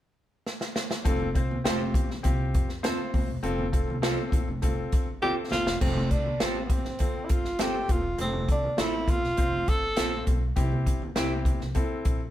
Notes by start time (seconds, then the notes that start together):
0.46 snare
0.61 snare
0.76 snare
0.91 snare
1.05 F1 C4 F4 A4, kick, closed hi-hat, low conga
1.20 high conga
1.34 C2 C4 F4 C5, kick, closed hi-hat, muted conga
1.51 high conga
1.64 F1 C4 F4 G4 A4 C5, snare, closed hi-hat, muted conga
1.94 A1, kick, closed hi-hat, muted conga, high conga
2.09 snare, low conga
2.23 C2 C4 F4 G4, kick, closed hi-hat, high conga
2.54 F2, kick, closed hi-hat, muted conga
2.69 snare
2.83 C4 F4 A4 C5, snare, closed hi-hat, muted conga, high conga
3.14 F1, kick, open hi-hat, muted conga, high conga
3.28 E1
3.43 F1 C4 F4 A4, closed hi-hat, muted conga, low conga
3.58 high conga
3.72 C4 F4 A4, kick, closed hi-hat, muted conga
3.87 C2, high conga
4.02 C4 F4 A4 C5, snare, closed hi-hat
4.32 A#1, kick, closed hi-hat, muted conga, high conga
4.47 F1, low conga
4.62 C4 F4 A4, kick, closed hi-hat, muted conga, high conga
4.92 G1, kick, closed hi-hat, muted conga
5.22 C4 F4 G4 A4 C5, muted conga, high conga
5.51 A1 F4, snare, muted conga, high conga
5.66 E1, snare
5.81 F1 C4 F4 A4, kick, crash, muted conga, low conga
5.96 high conga
6.10 C2 D4, kick, closed hi-hat
6.26 high conga
6.40 A1 C4 F4 G4 A4 C5, snare, closed hi-hat
6.65 B3
6.70 C4, kick, closed hi-hat, muted conga, high conga
6.84 A1, snare, low conga
6.99 C4 F4 A4, kick, closed hi-hat, high conga
7.15 muted upright bass stroke
7.25 E4
7.29 G1 F4, kick, closed hi-hat, muted conga
7.45 snare
7.59 C4 F4 G4 A4 C5, snare, closed hi-hat, high conga
7.88 E1 F4, kick, closed hi-hat, muted conga, high conga
8.18 F1 C4 F4 G#4, closed hi-hat, muted conga, low conga
8.24 A4
8.33 high conga
8.48 C2 D4, kick, closed hi-hat, muted conga
8.64 high conga
8.77 A1 C4 E4 F4 A4 C5, snare, closed hi-hat, muted conga
9.08 F4, kick, closed hi-hat, muted conga, high conga
9.22 E1, snare, low conga
9.37 F1 C4 F4 C5, kick, closed hi-hat, muted conga, high conga
9.66 G1 A4, kick, closed hi-hat, muted conga
9.96 A#1 C4 F4 A4 C5, snare, closed hi-hat, high conga
10.27 B1, kick, closed hi-hat, high conga
10.56 C2 C4 E4 G4, kick, closed hi-hat, low conga
10.72 high conga
10.86 G1, kick, closed hi-hat, muted conga
11.02 high conga
11.16 C2 C4 E4 G4 C5, snare, closed hi-hat
11.45 kick, closed hi-hat, muted conga, high conga
11.60 C2, snare, low conga
11.75 C4 E4 A4, kick, closed hi-hat, high conga
11.90 muted upright bass stroke
12.05 A#1, kick, closed hi-hat